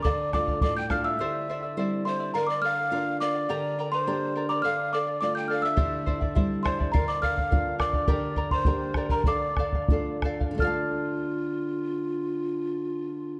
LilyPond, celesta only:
\new Staff \with { instrumentName = "Celesta" } { \time 2/4 \key d \minor \tempo 4 = 104 d'''8 d'''8 d'''16 g'''16 f'''16 e'''16~ | e'''4. c'''8 | bes''16 d'''16 f'''4 d'''8~ | d'''8. c'''4 d'''16 |
f'''8 d'''8 d'''16 g'''16 f'''16 e'''16~ | e'''4. c'''8 | bes''16 d'''16 f'''4 d'''8~ | d'''8. c'''4 bes''16 |
d'''4. r8 | f'''2~ | f'''2 | }